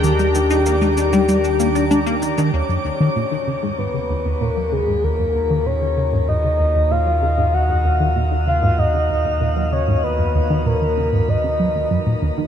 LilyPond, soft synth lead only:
\new Staff \with { instrumentName = "Soft synth lead" } { \time 4/4 \key ees \major \tempo 4 = 96 g'2.~ g'8 r8 | \key ees \minor des''2 ces''4 bes'8 aes'8 | bes'4 des''4 ees''4 f''4 | ges''4 r8 f''8 ees''4. des''8 |
ces''4 bes'4 ees''4. r8 | }